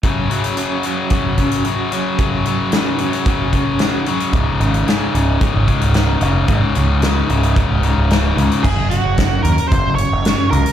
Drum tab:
CC |----------------|----------------|----------------|----------------|
HH |x-xxx-x-x-xxx-x-|x-x-x-xxx-x-x-xx|x-xxx-x-x-xxx-x-|x-x-x-xxx-x-x-xx|
SD |----------------|----o-------o---|----o-------o---|----o-------o---|
BD |o-------o-o-----|o-------o-o-----|o-------o-o-----|o-------o-------|

CC |x---------------|
HH |--x-x-xxx-x-x-xx|
SD |----o-------o---|
BD |o---o---o-------|